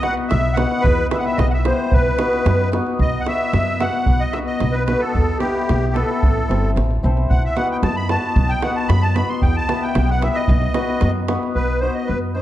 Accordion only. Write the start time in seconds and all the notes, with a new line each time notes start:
0.03 F#5
0.29 E5
0.53 F#5
0.80 B4
1.10 E5
1.18 F#5
1.25 E5
1.37 D#5
1.50 E5 F#5
1.66 C5
1.93 B4
3.01 D#5
3.20 F#5
3.27 E5
3.81 F#5
4.20 D#5
4.32 E5
4.47 D#5
4.72 B4
4.85 B4
5.00 A4
5.39 G4
5.93 A4
7.30 F#5
7.45 E5
7.56 F#5
7.72 G5
7.83 A5
7.96 B5
8.10 A5
8.49 G5
8.62 F#5
8.76 A5
8.88 B5
9.02 A5
9.15 B5
9.29 C6
9.42 G5
9.57 A5
9.82 G5
10.10 F#5
10.23 E5
10.35 D#5
11.55 B4
11.80 C5
11.94 D#5
12.06 B4
12.34 C5